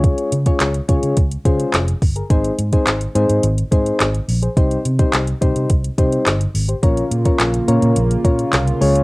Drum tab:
HH |xxxxxxxxxxxxxxox|xxxxxxxxxxxxxxox|xxxxxxxxxxxxxxox|xxxxxxxxxxxxxxox|
CP |----x-------x---|----x-------x---|----x-------x---|----x-------x---|
SD |----o-------o---|----o-------o---|----o-------o---|----o-------o---|
BD |o--o--o-o-o---o-|o--o------o-----|o--o--o-o-o-----|o--o------o-----|